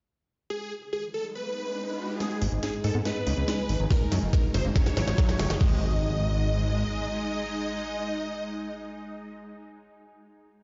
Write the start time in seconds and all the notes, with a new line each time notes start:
0.50 G#3 D#4 G#4, riser
0.66 D#5
0.93 G#4
1.14 A4
1.27 G#5
1.35 B4
2.20 G#3 D#4 G#4, snare, closed hi-hat, riser
2.31 closed hi-hat
2.42 G#1 G#3, open hi-hat
2.52 G#1, closed hi-hat
2.63 G#4, snare, closed hi-hat
2.73 closed hi-hat
2.84 G#2 G#3 A4, open hi-hat
2.95 G#2 B3, closed hi-hat
3.05 G#3 B4, snare, closed hi-hat
3.16 closed hi-hat
3.27 C#2 G#3, open hi-hat
3.37 C#2, closed hi-hat
3.48 G#3, snare, closed hi-hat
3.59 closed hi-hat
3.69 G#1 A3, open hi-hat
3.80 G#1 F#3, closed hi-hat
3.91 F#3 F#4 A#4, kick, snare, closed hi-hat
4.01 closed hi-hat
4.12 F#2 F#3 C#5, snare, open hi-hat
4.22 F#1, closed hi-hat
4.33 A#4, kick, snare, closed hi-hat
4.44 closed hi-hat
4.54 F#1 F#3 C5, snare, open hi-hat
4.65 F#1 A#3, closed hi-hat
4.76 F#3 C#5, kick, snare, closed hi-hat
4.86 snare, closed hi-hat
4.97 G#1 F#3, snare, open hi-hat
5.08 G#1, snare
5.18 F#3, kick, snare, closed hi-hat
5.29 snare, closed hi-hat
5.39 F#1 G#3, snare, open hi-hat
5.50 F#1 F3, snare, closed hi-hat
5.61 G#1 G#3 D#4 G#4 D#5, kick, crash, impact
5.67 D#5
5.74 G#5